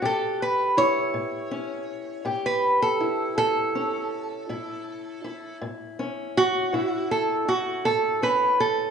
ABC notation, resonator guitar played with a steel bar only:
X:1
M:12/8
L:1/16
Q:3/8=54
K:Amix
V:1 name="Resonator guitar played with a steel bar"
A2 B2 c8- c B2 A3 A6- | A6 z4 F4 A2 F2 A2 B2 A2 |]